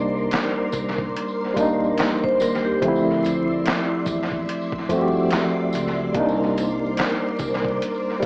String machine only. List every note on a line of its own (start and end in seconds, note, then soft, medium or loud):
0.00 2.78 A#4 medium
0.00 2.78 C5 medium
0.00 2.78 D5 medium
0.00 8.26 C6 medium
2.84 6.13 E4 medium
2.84 8.26 D5 medium
2.84 6.13 E5 medium
6.16 8.26 A#4 medium
6.16 8.26 C5 medium